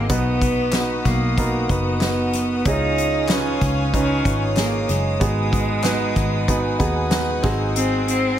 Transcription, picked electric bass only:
0.10 1.02 B1 medium
1.05 1.66 B1 loud
1.70 2.62 F#1 medium
2.65 3.57 C#2 medium
3.62 4.21 C#2 medium
4.25 4.85 G#1 medium
4.89 5.19 F#1 medium
5.21 6.13 G#1 medium
6.16 6.76 G#1 medium
6.80 7.40 D#2 medium
7.44 8.39 G#1 medium

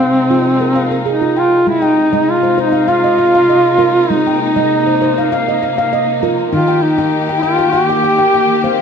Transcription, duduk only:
0.00 1.02 C4 loud
1.08 1.40 D#4 medium
1.39 1.68 F4 loud
1.69 2.31 D#4 loud
2.30 2.59 F4 medium
2.60 2.90 D#4 medium
2.88 4.11 F4 loud
4.10 4.40 D#4 loud
4.41 5.58 D#4 medium
6.52 6.84 F4 medium
6.82 7.43 D#4 medium
7.42 7.73 F4 medium
7.72 8.82 G4 loud

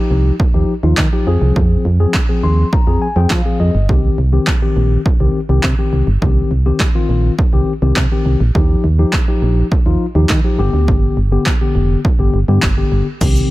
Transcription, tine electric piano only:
0.00 0.34 F3 medium
0.00 0.34 D#4 medium
0.00 0.34 G4 medium
0.54 0.73 F3 medium
0.54 0.73 D#4 medium
0.54 0.73 G4 medium
0.83 1.02 F3 medium
0.83 1.02 D#4 medium
0.83 1.02 F4 medium
1.13 1.26 F3 medium
1.13 1.27 D#4 medium
1.13 1.27 G4 medium
1.27 1.85 F3 medium
1.27 1.85 C4 medium
1.27 1.85 G#4 loud
2.00 2.19 F3 medium
2.00 2.19 C4 medium
2.00 2.19 G#4 medium
2.29 2.67 F3 medium
2.29 2.67 C4 medium
2.29 2.67 G#4 medium
2.43 2.70 C6 medium
2.73 3.00 A#5 medium
2.87 3.06 F3 medium
2.87 3.06 C4 medium
2.87 3.06 G#4 medium
3.02 3.15 G#5 medium
3.16 3.35 F3 medium
3.16 3.35 C4 medium
3.16 3.35 G#4 medium
3.16 3.30 G5 medium
3.31 3.58 F5 medium
3.45 3.74 F3 medium
3.45 3.74 C4 medium
3.45 3.74 G#4 medium
3.60 3.87 D#5 medium
3.89 4.18 D#3 medium
3.89 4.18 C4 medium
3.89 4.18 G4 medium
4.33 4.52 D#3 medium
4.33 4.52 C4 medium
4.33 4.52 G4 medium
4.62 5.00 D#3 medium
4.62 5.00 C4 medium
4.62 5.00 G4 medium
5.20 5.39 D#3 medium
5.20 5.39 C4 medium
5.20 5.39 G4 medium
5.49 5.68 D#3 medium
5.49 5.68 C4 medium
5.49 5.69 G4 medium
5.78 6.07 D#3 medium
5.78 6.07 C4 medium
5.78 6.07 G4 medium
6.22 6.50 D#3 medium
6.22 6.51 C4 medium
6.22 6.51 G4 medium
6.66 6.85 D#3 medium
6.66 6.85 C4 medium
6.66 6.85 G4 medium
6.95 7.33 D#3 medium
6.95 7.33 C4 medium
6.95 7.33 F4 medium
7.53 7.72 D#3 medium
7.53 7.72 C4 medium
7.53 7.72 G4 loud
7.82 8.01 D#3 medium
7.82 8.01 C4 medium
7.82 8.01 G4 medium
8.12 8.40 D#3 medium
8.12 8.40 C4 medium
8.12 8.40 G4 medium
8.55 8.84 F3 medium
8.55 8.84 D#4 medium
8.55 8.84 G4 medium
8.99 9.18 F3 medium
8.99 9.18 D#4 medium
8.99 9.18 G4 medium
9.28 9.66 F3 medium
9.28 9.66 D#4 medium
9.28 9.66 G4 medium
9.86 10.05 F3 medium
9.86 10.05 D#4 medium
9.86 10.05 F4 medium
10.15 10.34 F3 medium
10.15 10.34 D#4 medium
10.15 10.34 G4 medium
10.44 10.59 F3 medium
10.44 10.59 D#4 medium
10.44 10.58 G4 medium
10.59 11.17 D3 medium
10.59 11.17 B3 medium
10.59 11.17 G4 loud
11.32 11.51 D3 medium
11.32 11.51 B3 medium
11.32 11.51 G4 medium
11.61 11.99 D3 medium
11.61 11.99 B3 medium
11.61 11.99 G4 medium
12.19 12.38 D3 medium
12.19 12.38 B3 medium
12.19 12.38 G4 medium
12.48 12.67 D3 medium
12.48 12.67 B3 medium
12.48 12.67 G4 medium
12.77 13.06 D3 medium
12.77 13.06 B3 medium
12.77 13.06 G4 medium
13.21 13.50 D#3 medium
13.21 13.50 C4 medium
13.21 13.50 G4 medium

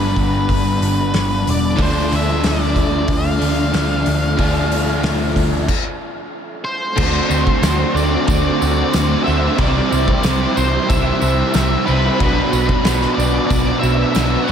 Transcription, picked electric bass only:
0.00 0.16 G1 medium
0.17 0.48 G1 medium
0.49 0.80 G1 medium
0.81 1.12 G1 medium
1.14 1.45 G1 medium
1.46 1.77 E1 medium
1.79 2.10 D2 medium
2.12 2.43 D2 medium
2.44 3.07 D2 medium
3.09 3.40 D2 medium
3.41 3.72 D2 medium
3.74 4.05 D2 medium
4.07 4.38 D2 medium
4.39 5.02 D2 medium
5.03 5.35 D2 medium
5.36 5.67 D2 medium
6.98 7.18 D2 loud
7.30 7.50 D2 medium
7.62 7.82 D2 medium
7.94 8.15 D2 medium
8.29 8.48 D2 medium
8.62 8.82 D2 medium
8.94 9.14 D2 loud
9.27 9.47 D2 loud
9.59 9.79 C2 loud
9.92 10.12 C2 medium
10.24 10.44 C2 medium
10.57 10.77 C2 medium
10.90 11.10 C2 loud
11.22 11.42 C2 medium
11.55 11.75 C2 medium
11.88 12.08 C2 medium
12.20 12.40 B1 loud
12.53 12.73 B1 medium
12.85 13.05 B1 medium
13.18 13.38 B1 medium
13.50 13.70 B1 loud
13.83 14.03 B1 medium
14.16 14.36 B1 medium

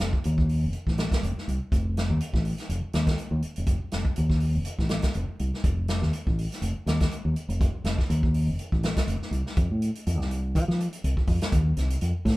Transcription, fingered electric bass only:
0.00 0.10 F1 medium
0.25 0.65 D#2 medium
0.64 0.72 F1 medium
0.87 1.05 A1 medium
1.11 muted fingered electric bass stroke soft
1.23 1.33 F1 medium
1.36 muted fingered electric bass stroke soft
1.48 1.58 C2 medium
1.72 2.11 F1 medium
2.10 2.18 D#2 medium
2.33 2.52 A1 medium
2.69 2.80 F1 medium
2.84 muted fingered electric bass stroke soft
2.94 3.13 D#2 medium
3.31 3.40 D#2 medium
3.44 muted fingered electric bass stroke soft
3.58 3.76 F1 medium
3.93 4.03 F1 medium
4.18 4.57 D#2 medium
4.55 4.64 F1 medium
4.79 4.98 A1 medium
5.15 5.25 F1 medium
5.40 5.50 C2 medium
5.64 6.03 F1 medium
6.02 6.11 D#2 medium
6.27 6.46 A1 medium
6.62 6.72 F1 medium
6.76 muted fingered electric bass stroke soft
6.86 7.05 D#2 medium
7.25 7.33 D#2 medium
7.36 muted fingered electric bass stroke soft
7.48 7.67 F1 medium
7.84 7.95 F1 medium
8.10 8.48 D#2 medium
8.47 8.56 F1 medium
8.72 8.91 A1 medium
9.07 9.18 F1 medium
9.20 muted fingered electric bass stroke soft
9.31 9.42 C2 medium
9.57 9.67 F2 medium
9.71 9.89 A2 medium
10.07 10.18 F2 medium
10.18 10.57 C2 medium
10.55 10.65 F3 medium
10.68 10.86 F3 medium
11.04 11.14 C2 medium
11.17 muted fingered electric bass stroke soft
11.27 11.38 F2 medium
11.53 11.71 D#2 loud
11.77 11.95 C2 medium
12.02 12.12 F2 medium
12.25 12.37 A2 medium

